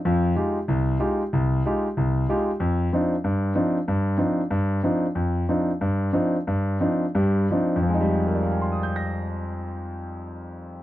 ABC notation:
X:1
M:4/4
L:1/8
Q:"Swing" 1/4=188
K:Fdor
V:1 name="Grand piano"
[F,,F,]2 [A,EFG] z C,,2 [A,EFG] z | C,,2 [A,EFG] z C,,2 [A,EFG] z | F,,2 [F,CDE] z G,,2 [F,CDE] z | G,,2 [F,CDE] z G,,2 [F,CDE] z |
F,,2 [F,CDE] z G,,2 [F,CDE] z | G,,2 [F,CDE] z [G,,G,]2 [F,CDE] z | z2 [Bdfac'e'g'b']6- | [Bdfac'e'g'b']8 |]
V:2 name="Grand piano" clef=bass
z8 | z8 | z8 | z8 |
z8 | z8 | [F,,F,G,A,E]8- | [F,,F,G,A,E]8 |]